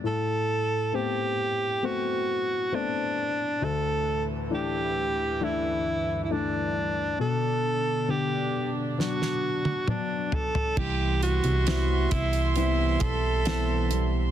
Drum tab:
CC |----------------|----------------|----------------|x---------------|
HH |----------------|----------------|----------------|--xxx-xxx-x-x-x-|
SD |----------------|----------------|--------oo------|----o-------o---|
T1 |----------------|----------------|-----------o----|----------------|
T2 |----------------|----------------|------------o---|----------------|
FT |----------------|----------------|--------------oo|----------------|
BD |----------------|----------------|----------------|o-----o---o-----|